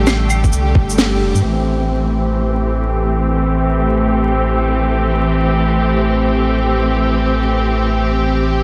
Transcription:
0, 0, Header, 1, 4, 480
1, 0, Start_track
1, 0, Key_signature, 0, "minor"
1, 0, Tempo, 500000
1, 8288, End_track
2, 0, Start_track
2, 0, Title_t, "String section"
2, 0, Program_c, 0, 48
2, 0, Note_on_c, 0, 50, 82
2, 0, Note_on_c, 0, 55, 71
2, 0, Note_on_c, 0, 57, 72
2, 0, Note_on_c, 0, 67, 88
2, 1339, Note_off_c, 0, 50, 0
2, 1339, Note_off_c, 0, 55, 0
2, 1339, Note_off_c, 0, 57, 0
2, 1339, Note_off_c, 0, 67, 0
2, 1374, Note_on_c, 0, 52, 72
2, 1374, Note_on_c, 0, 60, 67
2, 1375, Note_on_c, 0, 67, 77
2, 1376, Note_on_c, 0, 57, 65
2, 8288, Note_off_c, 0, 52, 0
2, 8288, Note_off_c, 0, 57, 0
2, 8288, Note_off_c, 0, 60, 0
2, 8288, Note_off_c, 0, 67, 0
2, 8288, End_track
3, 0, Start_track
3, 0, Title_t, "Sub bass"
3, 0, Program_c, 1, 38
3, 0, Note_on_c, 1, 33, 95
3, 493, Note_off_c, 1, 33, 0
3, 500, Note_on_c, 1, 36, 93
3, 706, Note_off_c, 1, 36, 0
3, 721, Note_on_c, 1, 31, 81
3, 1153, Note_on_c, 1, 29, 96
3, 1168, Note_off_c, 1, 31, 0
3, 1281, Note_off_c, 1, 29, 0
3, 1291, Note_on_c, 1, 43, 87
3, 1367, Note_off_c, 1, 43, 0
3, 1374, Note_on_c, 1, 33, 83
3, 8288, Note_off_c, 1, 33, 0
3, 8288, End_track
4, 0, Start_track
4, 0, Title_t, "Drums"
4, 67, Note_on_c, 9, 38, 99
4, 67, Note_on_c, 9, 75, 55
4, 67, Note_on_c, 9, 82, 54
4, 163, Note_off_c, 9, 38, 0
4, 163, Note_off_c, 9, 75, 0
4, 163, Note_off_c, 9, 82, 0
4, 288, Note_on_c, 9, 75, 36
4, 288, Note_on_c, 9, 82, 56
4, 384, Note_off_c, 9, 75, 0
4, 384, Note_off_c, 9, 82, 0
4, 422, Note_on_c, 9, 36, 58
4, 423, Note_on_c, 9, 82, 31
4, 505, Note_off_c, 9, 82, 0
4, 505, Note_on_c, 9, 82, 56
4, 518, Note_off_c, 9, 36, 0
4, 601, Note_off_c, 9, 82, 0
4, 721, Note_on_c, 9, 36, 98
4, 817, Note_off_c, 9, 36, 0
4, 861, Note_on_c, 9, 82, 56
4, 944, Note_off_c, 9, 82, 0
4, 944, Note_on_c, 9, 38, 99
4, 944, Note_on_c, 9, 82, 54
4, 1040, Note_off_c, 9, 38, 0
4, 1040, Note_off_c, 9, 82, 0
4, 1299, Note_on_c, 9, 82, 31
4, 1395, Note_off_c, 9, 82, 0
4, 8288, End_track
0, 0, End_of_file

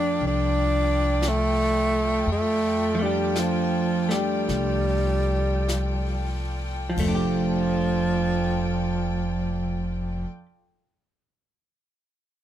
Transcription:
0, 0, Header, 1, 6, 480
1, 0, Start_track
1, 0, Key_signature, -1, "major"
1, 0, Tempo, 1005025
1, 581, Tempo, 1061947
1, 1051, Time_signature, 4, 2, 24, 8
1, 1541, Tempo, 1136364
1, 2021, Tempo, 1204819
1, 2501, Tempo, 1284797
1, 2981, Tempo, 1330377
1, 4956, End_track
2, 0, Start_track
2, 0, Title_t, "String section"
2, 0, Program_c, 0, 48
2, 0, Note_on_c, 0, 65, 64
2, 0, Note_on_c, 0, 69, 54
2, 0, Note_on_c, 0, 74, 50
2, 0, Note_on_c, 0, 79, 66
2, 2963, Note_off_c, 0, 74, 0
2, 2966, Note_off_c, 0, 69, 0
2, 2966, Note_off_c, 0, 79, 0
2, 2967, Note_off_c, 0, 65, 0
2, 2979, Note_on_c, 0, 69, 58
2, 2980, Note_on_c, 0, 65, 57
2, 2980, Note_on_c, 0, 74, 53
2, 2982, Note_on_c, 0, 79, 70
2, 4158, Note_off_c, 0, 69, 0
2, 4159, Note_off_c, 0, 65, 0
2, 4159, Note_off_c, 0, 74, 0
2, 4161, Note_off_c, 0, 79, 0
2, 4956, End_track
3, 0, Start_track
3, 0, Title_t, "Hollow-body jazz guitar"
3, 0, Program_c, 1, 26
3, 0, Note_on_c, 1, 53, 51
3, 0, Note_on_c, 1, 57, 51
3, 0, Note_on_c, 1, 62, 52
3, 0, Note_on_c, 1, 67, 53
3, 1046, Note_off_c, 1, 53, 0
3, 1056, Note_off_c, 1, 57, 0
3, 1063, Note_off_c, 1, 62, 0
3, 1071, Note_off_c, 1, 67, 0
3, 1363, Note_on_c, 1, 53, 46
3, 1381, Note_on_c, 1, 57, 52
3, 1398, Note_on_c, 1, 62, 50
3, 1413, Note_on_c, 1, 67, 58
3, 1852, Note_off_c, 1, 57, 0
3, 1857, Note_on_c, 1, 57, 33
3, 1861, Note_off_c, 1, 62, 0
3, 1865, Note_off_c, 1, 67, 0
3, 1866, Note_on_c, 1, 62, 33
3, 1870, Note_on_c, 1, 67, 34
3, 2950, Note_off_c, 1, 53, 0
3, 2954, Note_on_c, 1, 53, 49
3, 2980, Note_off_c, 1, 57, 0
3, 2984, Note_off_c, 1, 62, 0
3, 2986, Note_off_c, 1, 67, 0
3, 2992, Note_on_c, 1, 57, 58
3, 3022, Note_on_c, 1, 62, 51
3, 3047, Note_on_c, 1, 67, 58
3, 4149, Note_off_c, 1, 53, 0
3, 4185, Note_off_c, 1, 57, 0
3, 4216, Note_off_c, 1, 62, 0
3, 4240, Note_off_c, 1, 67, 0
3, 4956, End_track
4, 0, Start_track
4, 0, Title_t, "Tenor saxophone"
4, 0, Program_c, 2, 66
4, 0, Note_on_c, 2, 62, 85
4, 112, Note_off_c, 2, 62, 0
4, 129, Note_on_c, 2, 62, 85
4, 612, Note_on_c, 2, 57, 84
4, 618, Note_off_c, 2, 62, 0
4, 1067, Note_off_c, 2, 57, 0
4, 1080, Note_on_c, 2, 57, 81
4, 1395, Note_on_c, 2, 55, 67
4, 1402, Note_off_c, 2, 57, 0
4, 1563, Note_on_c, 2, 53, 66
4, 1569, Note_off_c, 2, 55, 0
4, 1877, Note_on_c, 2, 55, 75
4, 1883, Note_off_c, 2, 53, 0
4, 2823, Note_off_c, 2, 55, 0
4, 2996, Note_on_c, 2, 53, 77
4, 4175, Note_off_c, 2, 53, 0
4, 4956, End_track
5, 0, Start_track
5, 0, Title_t, "Upright bass"
5, 0, Program_c, 3, 32
5, 0, Note_on_c, 3, 41, 62
5, 80, Note_off_c, 3, 41, 0
5, 100, Note_on_c, 3, 36, 65
5, 1034, Note_off_c, 3, 36, 0
5, 1055, Note_on_c, 3, 41, 57
5, 2006, Note_off_c, 3, 41, 0
5, 2025, Note_on_c, 3, 36, 74
5, 2968, Note_off_c, 3, 36, 0
5, 2980, Note_on_c, 3, 29, 68
5, 4159, Note_off_c, 3, 29, 0
5, 4956, End_track
6, 0, Start_track
6, 0, Title_t, "Drums"
6, 101, Note_on_c, 9, 25, 27
6, 583, Note_off_c, 9, 25, 0
6, 583, Note_on_c, 9, 25, 36
6, 583, Note_on_c, 9, 38, 42
6, 583, Note_on_c, 9, 44, 46
6, 629, Note_off_c, 9, 38, 0
6, 629, Note_off_c, 9, 44, 0
6, 1058, Note_off_c, 9, 25, 0
6, 1058, Note_on_c, 9, 25, 36
6, 1547, Note_off_c, 9, 25, 0
6, 1547, Note_on_c, 9, 25, 30
6, 1547, Note_on_c, 9, 38, 39
6, 1547, Note_on_c, 9, 44, 40
6, 1589, Note_off_c, 9, 38, 0
6, 1589, Note_off_c, 9, 44, 0
6, 1862, Note_on_c, 9, 38, 23
6, 1904, Note_off_c, 9, 38, 0
6, 2024, Note_off_c, 9, 25, 0
6, 2024, Note_on_c, 9, 25, 29
6, 2024, Note_on_c, 9, 38, 22
6, 2064, Note_off_c, 9, 38, 0
6, 2502, Note_off_c, 9, 25, 0
6, 2502, Note_on_c, 9, 25, 36
6, 2502, Note_on_c, 9, 38, 40
6, 2502, Note_on_c, 9, 44, 46
6, 2540, Note_off_c, 9, 38, 0
6, 2540, Note_off_c, 9, 44, 0
6, 2981, Note_on_c, 9, 36, 46
6, 2983, Note_on_c, 9, 49, 57
6, 3017, Note_off_c, 9, 36, 0
6, 3019, Note_off_c, 9, 49, 0
6, 3203, Note_off_c, 9, 25, 0
6, 4956, End_track
0, 0, End_of_file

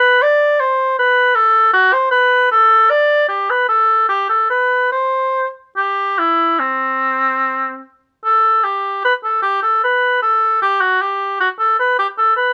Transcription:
0, 0, Header, 1, 2, 480
1, 0, Start_track
1, 0, Key_signature, 0, "major"
1, 0, Tempo, 768246
1, 1085, Time_signature, 4, 2, 24, 8
1, 2061, Tempo, 797872
1, 2541, Tempo, 831025
1, 4939, Key_signature, 1, "major"
1, 4941, Tempo, 782269
1, 7568, End_track
2, 0, Start_track
2, 0, Title_t, "Oboe"
2, 0, Program_c, 0, 68
2, 0, Note_on_c, 0, 71, 80
2, 141, Note_on_c, 0, 74, 79
2, 150, Note_off_c, 0, 71, 0
2, 377, Note_on_c, 0, 72, 66
2, 386, Note_off_c, 0, 74, 0
2, 611, Note_off_c, 0, 72, 0
2, 618, Note_on_c, 0, 71, 72
2, 847, Note_on_c, 0, 69, 77
2, 856, Note_off_c, 0, 71, 0
2, 1078, Note_off_c, 0, 69, 0
2, 1082, Note_on_c, 0, 66, 83
2, 1206, Note_on_c, 0, 72, 68
2, 1215, Note_off_c, 0, 66, 0
2, 1314, Note_off_c, 0, 72, 0
2, 1318, Note_on_c, 0, 71, 71
2, 1558, Note_off_c, 0, 71, 0
2, 1570, Note_on_c, 0, 69, 74
2, 1812, Note_on_c, 0, 74, 76
2, 1822, Note_off_c, 0, 69, 0
2, 2049, Note_off_c, 0, 74, 0
2, 2053, Note_on_c, 0, 67, 56
2, 2183, Note_on_c, 0, 71, 61
2, 2192, Note_off_c, 0, 67, 0
2, 2291, Note_off_c, 0, 71, 0
2, 2295, Note_on_c, 0, 69, 70
2, 2533, Note_off_c, 0, 69, 0
2, 2537, Note_on_c, 0, 67, 68
2, 2653, Note_off_c, 0, 67, 0
2, 2655, Note_on_c, 0, 69, 55
2, 2772, Note_off_c, 0, 69, 0
2, 2775, Note_on_c, 0, 71, 61
2, 3013, Note_off_c, 0, 71, 0
2, 3017, Note_on_c, 0, 72, 57
2, 3333, Note_off_c, 0, 72, 0
2, 3506, Note_on_c, 0, 67, 61
2, 3746, Note_on_c, 0, 64, 64
2, 3755, Note_off_c, 0, 67, 0
2, 3985, Note_on_c, 0, 60, 58
2, 3994, Note_off_c, 0, 64, 0
2, 4699, Note_off_c, 0, 60, 0
2, 4939, Note_on_c, 0, 69, 69
2, 5178, Note_on_c, 0, 67, 56
2, 5187, Note_off_c, 0, 69, 0
2, 5423, Note_off_c, 0, 67, 0
2, 5430, Note_on_c, 0, 71, 69
2, 5483, Note_off_c, 0, 71, 0
2, 5547, Note_on_c, 0, 69, 57
2, 5657, Note_off_c, 0, 69, 0
2, 5661, Note_on_c, 0, 67, 70
2, 5780, Note_off_c, 0, 67, 0
2, 5784, Note_on_c, 0, 69, 59
2, 5904, Note_off_c, 0, 69, 0
2, 5913, Note_on_c, 0, 71, 65
2, 6147, Note_off_c, 0, 71, 0
2, 6150, Note_on_c, 0, 69, 65
2, 6384, Note_off_c, 0, 69, 0
2, 6393, Note_on_c, 0, 67, 70
2, 6511, Note_on_c, 0, 66, 64
2, 6520, Note_off_c, 0, 67, 0
2, 6640, Note_on_c, 0, 67, 61
2, 6649, Note_off_c, 0, 66, 0
2, 6871, Note_off_c, 0, 67, 0
2, 6874, Note_on_c, 0, 66, 59
2, 6927, Note_off_c, 0, 66, 0
2, 6991, Note_on_c, 0, 69, 60
2, 7106, Note_off_c, 0, 69, 0
2, 7115, Note_on_c, 0, 71, 62
2, 7227, Note_off_c, 0, 71, 0
2, 7235, Note_on_c, 0, 67, 65
2, 7285, Note_off_c, 0, 67, 0
2, 7353, Note_on_c, 0, 69, 65
2, 7460, Note_off_c, 0, 69, 0
2, 7464, Note_on_c, 0, 71, 60
2, 7568, Note_off_c, 0, 71, 0
2, 7568, End_track
0, 0, End_of_file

